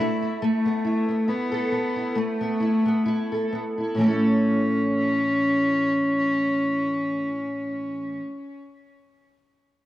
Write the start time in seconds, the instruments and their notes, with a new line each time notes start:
Already playing: steel-string acoustic guitar B3, cello E4
0.00 steel-string acoustic guitar A3
0.22 steel-string acoustic guitar E4
0.42 steel-string acoustic guitar A3, cello A3
0.65 steel-string acoustic guitar B3
0.84 steel-string acoustic guitar E4
1.08 steel-string acoustic guitar B3
1.28 cello B3, steel-string acoustic guitar E4
1.51 steel-string acoustic guitar A4
1.72 steel-string acoustic guitar B3
1.96 steel-string acoustic guitar E4
2.15 steel-string acoustic guitar A3, cello A3
2.41 steel-string acoustic guitar B3
2.60 steel-string acoustic guitar E4
2.86 steel-string acoustic guitar B3
3.05 steel-string acoustic guitar E4
3.32 steel-string acoustic guitar A4
3.52 steel-string acoustic guitar B3
3.78 steel-string acoustic guitar E4
3.95 steel-string acoustic guitar A2 E3
3.99 steel-string acoustic guitar A3, cello C#4
4.04 steel-string acoustic guitar C#4 E4
4.08 steel-string acoustic guitar A4